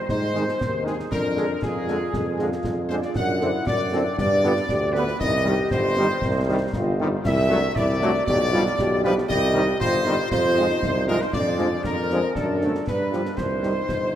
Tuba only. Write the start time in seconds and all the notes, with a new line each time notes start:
0.10 G#2
0.62 D#2
1.13 F2
1.63 F2
2.15 F2
2.65 F2
3.17 F#2
3.68 F#2
4.20 G2
4.70 D2
5.22 C2
5.73 G1
6.24 C2
6.75 G1
7.26 C2
7.78 C2
8.28 B1
8.79 B1
9.30 C2
9.81 G1
10.32 F2
10.83 C2
11.35 F2
11.86 F2
12.37 F#2
12.88 G2
13.39 C2
13.91 G1